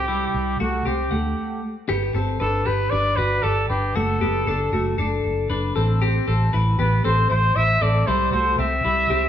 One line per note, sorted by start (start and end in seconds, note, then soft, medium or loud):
0.00 0.25 C2 medium
0.00 0.56 G4 medium
0.08 0.57 G3 medium
0.08 0.57 E4 medium
0.34 0.55 C2 medium
0.60 0.81 C2 medium
0.60 0.86 A3 soft
0.60 0.85 F#4 medium
0.60 0.88 F#4 medium
0.85 1.07 C2 medium
0.85 1.12 C4 soft
0.85 1.11 G4 medium
0.85 1.64 G4 medium
1.11 1.33 D2 medium
1.11 1.60 A3 soft
1.11 1.60 F#5 medium
1.89 2.10 G1 medium
1.89 2.14 B3 medium
1.89 2.15 G4 loud
2.15 2.36 G1 medium
2.15 2.41 C4 medium
2.15 2.40 A4 medium
2.40 2.62 G1 loud
2.40 2.67 D4 medium
2.40 2.68 A4 medium
2.40 2.66 B4 medium
2.66 2.88 G1 medium
2.66 2.92 B3 medium
2.66 2.92 G4 medium
2.66 2.92 B4 medium
2.90 3.14 G1 loud
2.90 3.18 D4 medium
2.90 3.18 B4 medium
2.90 3.18 D5 medium
3.16 3.39 G1 loud
3.16 3.44 F#4 medium
3.16 3.44 B4 medium
3.16 3.42 D5 medium
3.43 3.65 G1 medium
3.43 3.70 G4 medium
3.43 3.68 A4 loud
3.43 3.69 D5 medium
3.69 3.91 G1 medium
3.69 3.96 D4 medium
3.69 3.97 G4 medium
3.69 3.95 B4 medium
3.96 4.17 F#1 loud
3.96 4.22 A3 medium
3.96 4.21 F#4 medium
3.96 4.99 A4 medium
4.21 4.43 F#1 medium
4.21 4.47 B3 medium
4.21 4.47 G4 medium
4.47 4.68 F#1 loud
4.47 4.73 D4 medium
4.47 4.73 A4 medium
4.73 4.94 F#1 loud
4.73 4.99 A3 medium
4.73 4.98 F#4 medium
4.98 5.19 F#1 loud
4.98 5.47 D4 medium
4.98 5.47 A4 medium
5.25 5.46 F#1 loud
5.50 5.71 F#1 loud
5.50 5.76 D4 medium
5.50 5.75 B4 medium
5.76 6.18 A1 loud
5.76 6.01 C4 medium
5.76 6.01 A4 medium
6.02 6.27 C4 medium
6.02 6.27 G4 loud
6.28 6.49 A1 loud
6.28 6.53 C4 medium
6.28 6.53 A4 medium
6.53 6.75 A1 loud
6.53 6.78 E4 medium
6.53 6.79 B4 medium
6.79 7.00 A1 loud
6.79 7.05 B3 medium
6.79 7.04 G4 medium
6.79 7.03 B4 medium
7.04 7.26 A1 loud
7.04 7.30 C4 medium
7.04 7.30 A4 medium
7.04 7.29 C5 medium
7.30 7.52 A1 medium
7.30 7.56 E4 medium
7.30 7.55 C5 medium
7.30 7.57 C5 medium
7.56 7.77 A1 medium
7.56 7.82 E4 medium
7.56 7.81 C5 medium
7.56 7.83 E5 loud
7.81 8.03 A1 medium
7.81 8.08 C4 medium
7.81 8.07 A4 medium
7.81 8.08 D5 medium
8.07 8.29 C2 loud
8.07 8.33 G3 medium
8.07 8.33 E4 medium
8.07 8.32 C5 medium
8.33 8.54 C2 medium
8.33 8.59 A3 medium
8.33 8.58 F#4 medium
8.33 8.57 C5 medium
8.58 8.80 C2 loud
8.58 8.85 C4 medium
8.58 8.84 G4 medium
8.58 9.29 E5 loud
8.85 9.06 C2 medium
8.85 9.10 G3 medium
8.85 9.10 E4 medium
9.10 9.29 C2 medium
9.10 9.29 C4 medium
9.10 9.29 G4 medium